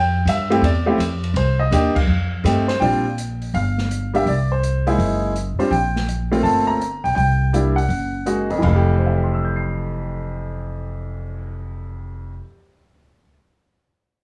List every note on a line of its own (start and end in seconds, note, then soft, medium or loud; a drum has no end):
0.00 0.25 F2 medium
0.00 0.29 G5 medium
0.26 0.61 G2 medium
0.26 0.65 E5 medium
0.26 hi-hat pedal medium
0.26 ride medium
0.50 0.62 A3 medium
0.50 0.62 C4 medium
0.50 0.62 E4 medium
0.50 0.62 G4 medium
0.50 ride soft
0.62 0.98 E2 medium
0.62 1.33 D5 medium
0.62 ride medium
0.86 0.98 A3 medium
0.86 0.98 C4 medium
0.86 0.98 E4 medium
0.86 0.98 G4 medium
0.98 1.33 F2 medium
0.98 hi-hat pedal medium
0.98 ride medium
1.24 ride soft
1.34 1.70 C2 medium
1.34 1.61 C5 medium
1.34 ride medium
1.59 1.93 D#5 medium
1.71 1.94 D#2 medium
1.71 1.94 A#3 medium
1.71 1.94 D4 medium
1.71 1.94 D#4 medium
1.71 1.94 G4 medium
1.71 hi-hat pedal medium
1.71 ride medium
1.95 2.64 F5 medium
1.95 muted upright bass stroke soft
1.95 kick medium
1.95 crash medium
2.07 2.43 F2 medium
2.44 2.80 G2 medium
2.44 2.66 A3 medium
2.44 2.66 C4 medium
2.44 2.67 D#4 medium
2.44 2.67 G4 medium
2.44 hi-hat pedal medium
2.44 ride medium
2.68 2.81 C5 medium
2.68 snare soft
2.68 ride soft
2.80 3.50 A#1 medium
2.80 3.03 G3 medium
2.80 3.03 C4 medium
2.80 3.03 D4 medium
2.80 3.03 F4 medium
2.80 3.56 G5 medium
2.80 open hi-hat soft
3.18 closed hi-hat medium
3.42 open hi-hat soft
3.54 4.23 G1 medium
3.54 4.16 F5 medium
3.54 open hi-hat soft
3.78 snare soft
3.91 closed hi-hat medium
4.14 4.25 G3 medium
4.14 4.25 A#3 medium
4.14 4.25 D4 medium
4.14 4.26 G4 medium
4.14 4.28 E5 medium
4.14 open hi-hat soft
4.26 4.95 C2 medium
4.26 4.52 D5 medium
4.26 open hi-hat soft
4.52 5.20 C5 medium
4.63 closed hi-hat medium
4.87 5.33 G#3 medium
4.87 5.33 A#3 medium
4.87 5.33 D#4 medium
4.87 5.33 E4 medium
4.87 open hi-hat soft
4.99 5.55 F#1 medium
4.99 open hi-hat soft
5.36 closed hi-hat soft
5.58 5.70 G3 medium
5.58 5.70 C4 medium
5.58 5.71 D4 medium
5.58 5.71 F4 medium
5.58 5.71 C5 medium
5.58 muted upright bass stroke soft
5.58 open hi-hat soft
5.71 6.40 A#1 medium
5.71 6.40 G5 medium
5.71 open hi-hat soft
5.96 snare soft
6.09 closed hi-hat medium
6.32 6.78 A3 medium
6.32 6.78 A#3 medium
6.32 6.78 C4 medium
6.32 6.79 F4 medium
6.32 open hi-hat soft
6.43 7.00 G1 medium
6.43 6.68 A5 medium
6.43 open hi-hat soft
6.67 7.05 A#5 loud
6.81 closed hi-hat soft
7.04 7.16 B1 medium
7.04 7.14 G5 medium
7.04 open hi-hat soft
7.15 7.86 C2 medium
7.15 7.78 G5 medium
7.15 open hi-hat soft
7.53 7.75 G3 medium
7.53 7.75 A#3 medium
7.53 7.75 D4 medium
7.53 7.75 E4 medium
7.53 closed hi-hat soft
7.76 8.45 F#5 medium
7.76 open hi-hat soft
7.89 8.58 F#1 medium
7.89 open hi-hat soft
8.26 8.48 G#3 medium
8.26 8.48 A#3 medium
8.26 8.48 D#4 medium
8.26 8.48 F#4 medium
8.26 closed hi-hat soft
8.50 12.30 F2 medium
8.50 open hi-hat soft
8.59 12.38 F1 medium
8.59 12.38 E3 medium
8.59 kick soft
8.63 12.39 F5 medium
8.63 crash medium
8.67 12.47 A3 medium
8.75 12.55 G4 medium
8.87 cymbal swell soft
8.99 12.75 C5 soft
9.06 12.82 E5 soft
9.15 12.90 G5 soft
9.24 12.99 C6 soft
9.34 13.10 E6 soft
9.45 13.21 G6 soft
9.56 13.27 C7 soft